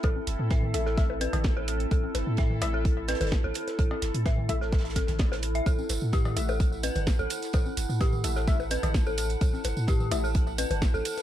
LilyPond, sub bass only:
\new Staff \with { instrumentName = "Sub bass" } { \clef bass \time 4/4 \key a \dorian \tempo 4 = 128 a,,16 r16 g,,16 a,8. a,,4~ a,,16 a,,4~ a,,16 | a,,16 r16 g,,16 a,8. a,,4~ a,,16 g,,16 r16 a,,16 r8 | a,,16 r16 g,,16 a,8. a,,4~ a,,16 a,,4~ a,,16 | a,,16 r16 g,,16 a,8. a,,4~ a,,16 g,,16 r16 a,,16 r8 |
a,,16 r16 g,,16 a,8. a,,4~ a,,16 a,,4~ a,,16 | a,,16 r16 g,,16 a,8. a,,4~ a,,16 g,,16 r16 a,,16 r8 | }